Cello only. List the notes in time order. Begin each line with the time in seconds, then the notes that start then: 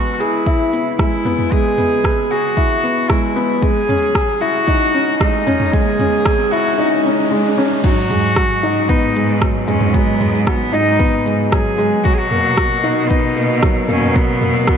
Already playing: F#4
0.13 F#4
0.19 E4
0.98 E4
1.52 G#4
2.31 F#4
3.09 E4
3.62 G#4
4.41 F#4
5.20 D#4
5.73 G#4
6.51 F#4
7.83 F#4
8.88 D#4
9.68 C#4
9.94 B3
10.46 B3
10.73 D#4
11.52 G#4
12.04 F#4
12.13 G#4
12.18 F#4
13.09 D#4
13.90 C#4
14.16 B3
14.67 B3